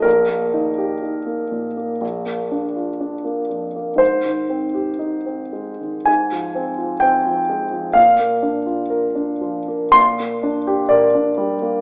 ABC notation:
X:1
M:4/4
L:1/16
Q:1/4=61
K:Bbmix
V:1 name="Grand piano"
B12- B2 z2 | c8 a4 g4 | f8 c'4 d4 |]
V:2 name="Grand piano"
B,,, B, E G E B, B,, B, B,,, B, D F D B, F,, B, | A,, E, C G E C A, E, A,, F, C F C F, A, F, | B,, B, D F B D F, B, B,, B, D G B D G, B, |]